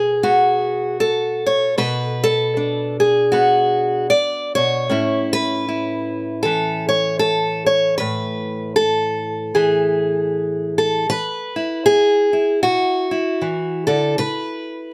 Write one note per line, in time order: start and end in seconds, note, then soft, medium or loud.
0.00 1.76 B2 medium
0.00 1.00 G#4 medium
0.23 1.75 B3 medium
0.23 1.46 F#4 medium
1.00 2.22 A4 medium
1.46 1.78 C#5 medium
1.78 4.11 B2 medium
1.78 3.02 B4 medium
2.24 2.99 A4 medium
2.57 4.86 D4 soft
3.00 4.11 G#4 medium
3.32 4.85 B3 medium
3.32 4.09 F#4 medium
4.10 4.55 D5 medium
4.55 4.89 B2 medium
4.55 5.33 C#5 medium
4.89 7.96 A2 medium
4.89 7.97 C#4 soft
4.89 5.68 E4 soft
5.33 6.42 B4 loud
5.68 9.18 E4 soft
6.43 9.54 E3 medium
6.43 6.88 A4 medium
6.89 7.19 C#5 medium
7.19 7.66 A4 medium
7.66 7.97 C#5 medium
7.98 11.06 A2 medium
7.98 8.75 B4 medium
8.76 10.77 A4 medium
9.55 11.08 E3 medium
9.55 11.10 G#4 medium
10.78 11.09 A4 medium
11.10 11.81 E3 medium
11.10 11.85 B4 loud
11.56 12.33 E4 soft
11.86 12.58 B3 medium
11.86 12.62 G#4 loud
12.33 13.11 E4 soft
12.63 13.36 B2 medium
12.63 13.86 F#4 medium
13.11 14.94 E4 soft
13.41 13.88 E3 medium
13.87 14.19 D3 medium
13.87 14.18 A4 medium
14.18 14.91 C#3 medium
14.18 14.94 B4 medium